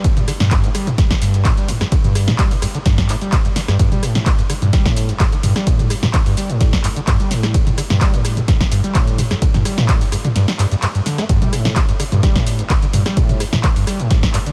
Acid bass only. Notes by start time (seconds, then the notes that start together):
0.04 G2
0.17 G2
0.28 D3
0.40 G2
0.64 A2
0.75 G3
0.87 G2
0.98 G2
1.11 D3
1.22 G2
1.45 A2
1.57 G3
1.68 G2
1.81 G2
1.92 D3
2.04 G2
2.28 A2
2.39 G3
2.51 G2
2.62 G2
2.75 D3
2.86 G2
3.09 A2
3.21 G3
3.33 G2
3.45 G2
3.56 D3
3.68 G2
3.79 G2
3.92 G3
4.03 A2
4.26 G2
4.39 G2
4.50 D3
4.62 G2
4.73 G3
4.86 A2
5.09 G2
5.20 G2
5.32 D3
5.43 G2
5.56 G3
5.67 A2
5.90 G2
6.03 G2
6.14 D3
6.26 G2
6.37 G3
6.50 A2
6.73 G2
6.84 G2
6.96 D3
7.07 G2
7.20 G3
7.31 A2
7.54 G2
7.67 G2
7.78 D3
7.90 G2
8.01 G3
8.14 A2
8.37 G2
8.48 G2
8.60 D3
8.71 G2
8.84 G3
8.95 A2
9.18 G2
9.31 G2
9.42 D3
9.54 G2
9.65 G3
9.78 A2
10.01 G2
10.12 G2
10.25 D3
10.36 G2
10.48 G3
10.59 G2
10.72 G2
10.82 G2
10.95 G2
11.06 D3
11.18 A#3
11.29 G2
11.42 G3
11.53 A2
11.76 G2
11.89 G2
12.00 D3
12.12 G2
12.23 G3
12.36 A2
12.59 G2
12.70 G2
12.82 D3
12.93 G2
13.06 G3
13.17 A2
13.40 G2
13.53 G2
13.64 D3
13.76 G2
13.87 G3
14.00 A2
14.23 G2
14.34 G2
14.46 D3